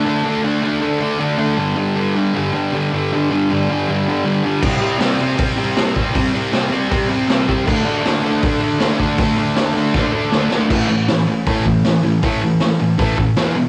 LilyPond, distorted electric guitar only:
\new Staff \with { instrumentName = "Distorted electric guitar" } { \clef bass \time 4/4 \key d \major \tempo 4 = 158 <d a d'>8 <d a d'>8 <d a d'>8 <d a d'>8 <d a d'>8 <d a d'>8 <d a d'>8 <d a d'>8 | <g, d g>8 <g, d g>8 <g, d g>8 <g, d g>8 <g, d g>8 <g, d g>8 <g, d g>8 <g, d g>8 | <g, d g>8 <g, d g>8 <g, d g>8 <g, d g>8 <g, d g>8 <g, d g>8 <g, d g>8 <g, d g>8 | <c g c'>8 <c g c'>8 <c g c'>8 <c g c'>8 <c g c'>8 <c g c'>8 <c g c'>8 <c g c'>8 |
<c g c'>8 <c g c'>8 <c g c'>8 <c g c'>8 <c g c'>8 <c g c'>8 <c g c'>8 <c g c'>8 | <d a d'>8 <d a d'>8 <d a d'>8 <d a d'>8 <d a d'>8 <d a d'>8 <d a d'>8 <d a d'>8 | <d a d'>8 <d a d'>8 <d a d'>8 <d a d'>8 <d a d'>8 <d a d'>8 <d a d'>8 <d a d'>8 | <a, e a>8 <a, e>8 <a, e>8 <a, e>8 <a, e a>8 <a, e>8 <a, e>8 <a, e>8 |
<a, e a>8 <a, e>8 <a, e>8 <a, e>8 <a, e a>8 <a, e>8 <e, b, e>8 <e, b,>8 | }